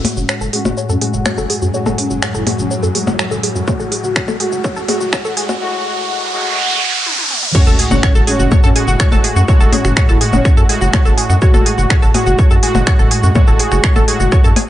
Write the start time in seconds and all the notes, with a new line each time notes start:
Already playing: F#2 A2 F#3 G#3 F#4 G#5, riser
0.05 G#4, open hi-hat, percussion blips
0.17 F#1 C#4 F#4, shaker
0.29 C#5, finger snap, shaker
0.41 F#1 A4, shaker
0.53 A2 G#3 C#4 F#4 G#4, open hi-hat
0.65 F#1 F#4, percussion blips, shaker
0.77 C#5, shaker
0.89 F#2 C#4 A4, shaker
1.01 A2 G#3 F#4 G#4, open hi-hat
1.14 F#1 F#4, shaker
1.26 C#5, finger snap, percussion blips, shaker
1.38 F#1 A4, shaker
1.50 G#4, open hi-hat
1.62 F#2 F#4, shaker
1.74 A2 G#3 F#4 C#5, shaker
1.86 F#1 A4, percussion blips, shaker
1.98 C#4 G#4, open hi-hat
2.10 F#1 F#4, shaker
2.22 C#5, finger snap, shaker
2.34 F#1 E4 A4, shaker
2.47 A2 G#3 F#4 G#4, open hi-hat, percussion blips
2.59 F#1 C#4 F#4, shaker
2.71 C#5, shaker
2.83 F#2 A4, shaker
2.95 A2 G#3 F#4 G#4, open hi-hat
3.07 F#1 F#4, percussion blips, shaker
3.19 C#5, finger snap, shaker
3.31 F#1 A4, shaker
3.43 G#4, open hi-hat
3.55 F#2 F#4, shaker
3.68 A2 G#3 F#4 C#5, kick, percussion blips, shaker
3.80 F#1 A4, shaker
3.92 G#4, open hi-hat
4.04 F#1 F#4, shaker
4.16 C#5, finger snap, kick, shaker
4.28 F#1 A4, percussion blips, shaker
4.40 A2 G#3 F#4 G#4, open hi-hat
4.52 F#1 F#4, shaker
4.64 C#5, kick, shaker
4.76 F#2 F#4 A4, shaker
4.88 A2 G#3 F#4 G#4, open hi-hat, percussion blips
5.01 F#1 F#4, shaker
5.13 C#5, finger snap, kick, shaker
5.25 F#1 A4, shaker
5.37 G#4, open hi-hat
5.49 F#2 F#4, percussion blips, shaker
5.61 A2 G#3 F#4, noise sweep
6.34 A2 G#3 F#4
7.06 high tom
7.19 high tom
7.31 mid tom
7.43 mid tom
7.55 A2 G#3 C#4 F#4 C#5 C#6, kick, crash, sub drop, shaker
7.67 F#1 A4 A5, shaker
7.79 G#4 G#5, open hi-hat
7.91 F#1 C#4 F#4 F#5, percussion blips, shaker
8.03 C#5 C#6, finger snap, kick, shaker
8.15 F#1 A4 A5, shaker
8.27 A2 G#3 C#4 F#4 G#4 G#5, open hi-hat
8.39 F#1 F#4 F#5, shaker
8.52 C#5 C#6, kick, percussion blips, shaker
8.64 F#2 C#4 A4 A5, shaker
8.76 A2 G#3 F#4 G#4 G#5, open hi-hat
8.88 F#1 F#4 F#5, shaker
9.00 C#5 C#6, finger snap, kick, shaker
9.12 F#1 A4 A5, percussion blips, shaker
9.24 G#4 G#5, open hi-hat
9.36 F#2 F#4 F#5, shaker
9.48 A2 G#3 F#4 C#5 C#6, kick, shaker
9.60 F#1 A4 A5, shaker
9.72 C#4 G#4 G#5, open hi-hat, percussion blips
9.85 F#1 F#4 F#5, finger snap, shaker
9.97 C#5 C#6, finger snap, kick, shaker
10.09 F#1 E4 A4 A5, shaker
10.21 A2 G#3 F#4 G#4 G#5, open hi-hat
10.33 F#1 C#4 F#4 F#5, percussion blips, shaker
10.45 C#5 C#6, finger snap, kick, shaker
10.57 F#2 A4 A5, shaker
10.69 A2 G#3 F#4 G#4 G#5, open hi-hat
10.81 F#1 F#4 F#5, shaker
10.93 C#5 C#6, finger snap, kick, percussion blips, shaker
11.05 F#1 A4 A5, shaker
11.17 G#4 G#5, open hi-hat
11.30 F#2 F#4 F#5, shaker
11.42 A2 G#3 F#4 C#5 C#6, kick, shaker
11.54 F#1 A4 A5, percussion blips, shaker
11.66 G#4 G#5, open hi-hat
11.78 F#1 F#4 F#5, shaker
11.90 C#5 C#6, finger snap, kick, shaker
12.02 F#1 A4 A5, shaker
12.14 A2 G#3 F#4 G#4 G#5, open hi-hat, percussion blips
12.26 F#1 F#4 F#5, shaker
12.39 C#5 C#6, kick, shaker
12.51 F#2 F#4 A4 A5, shaker
12.63 A2 G#3 F#4 G#4 G#5, open hi-hat
12.75 F#1 F#4 F#5, percussion blips, shaker
12.87 C#5 C#6, finger snap, kick, shaker
12.99 F#1 A4 A5, shaker
13.11 G#4 G#5, open hi-hat
13.23 F#2 F#4 F#5, shaker
13.35 A2 G#3 F#4 C#5 C#6, kick, percussion blips, shaker
13.47 F#1 A4 A5, shaker
13.59 G#4 G#5, open hi-hat
13.72 F#1 F#4 F#5, finger snap, shaker
13.84 C#5 C#6, finger snap, kick, shaker
13.96 F#1 A4 A5, percussion blips, shaker
14.08 A2 G#3 F#4 G#4 G#5, open hi-hat
14.20 F#1 F#4 F#5, shaker
14.32 C#5 C#6, finger snap, kick, shaker
14.44 F#2 A4 A5, shaker
14.56 G#4 G#5, open hi-hat, percussion blips